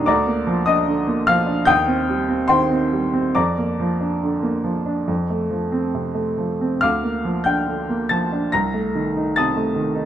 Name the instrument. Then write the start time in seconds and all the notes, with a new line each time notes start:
upright piano
Already playing: D#2 A#2 D#3 G3 D4 A#4 D#5 G5 A#5 D#6
0.06 D2 D5 A#5 D6
0.27 A#3
0.47 F3
0.66 D4 D#5 D#6
0.87 D3
1.07 A#3
1.27 F3 F5 F6
1.46 D4
1.65 D#2 G5 D#6 G6
1.87 C4
2.09 G3
2.29 C4
2.48 D#3 C5 G5 C6
2.71 C4
2.93 G3
3.14 C4
3.35 F2 D5 A#5 D6
3.58 A#3
3.80 F3
4.00 D4
4.23 D3
4.43 A#3
4.64 F3
4.86 D4
5.08 F2
5.30 A3
5.50 F3
5.72 C4
5.95 C3
6.15 A3
6.38 F3
6.61 C4
6.81 D2 F5 D6 F6
7.03 A#3
7.25 F3
7.44 D4 G5 G6
7.67 D3
7.89 A#3
8.09 F3 A5 A6
8.32 D4
8.52 C2 A#5 A#6
8.74 A3
8.95 D#3
9.16 D#4
9.36 C3 A5 D#6 A6
9.57 A3
9.76 D#3
9.95 D#4